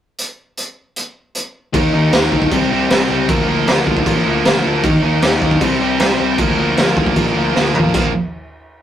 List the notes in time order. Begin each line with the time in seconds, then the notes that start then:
0.18 closed hi-hat
0.57 closed hi-hat
0.96 closed hi-hat
1.35 closed hi-hat
1.73 D#2 D#3 A#3 D#4, kick, crash
1.93 D#2 D#3 A#3 D#4
2.13 D#2 D#3 A#3 D#4, snare, crash
2.32 D2 D#3 A#3 D#4, kick
2.42 kick
2.52 C2 C3 G3 C4, kick, crash
2.71 C2 C3 G3 C4
2.90 C2 C3 G3 C4, snare, crash
3.09 C#2 C3 G3 C4
3.29 D2 A#2 F3 A#3, kick, crash
3.48 D2 A#2 F3 A#3
3.67 D2 A#2 F3 A#3, snare, crash
3.87 D2 A#2 F3 A#3, kick
3.97 kick
4.06 A1 A#2 F3 A#3, kick, crash
4.26 D2 A#2 F3 A#3
4.45 D2 A#2 F3 A#3, snare, crash
4.64 D2 A#2 F3 A#3
4.84 D#2 D#3 A#3 D#4, kick, crash
5.03 D#2 D#3 A#3 D#4
5.22 D#2 D#3 A#3 D#4, snare, crash
5.41 D#2 D#3 A#3 D#4, kick
5.51 kick
5.60 C2 C3 G3 C4, kick, crash
5.80 C2 C3 G3 C4
5.99 C2 C3 G3 C4, snare, crash
6.18 C2 C3 G3 C4
6.38 D2 A#2 F3 A#3, kick, crash
6.57 D2 A#2 F3 A#3
6.76 D2 A#2 F3 A#3, snare, crash
6.96 D2 A#2 F3 A#3, kick
7.06 kick
7.16 A1 A#2 F3 A#3, kick, crash
7.35 D2 A#2 F3 A#3
7.54 D2 A#2 F3 A#3, snare
7.74 A1 A#2 F3 A#3, floor tom
7.94 A#1 A#2 F3 A#3, kick, crash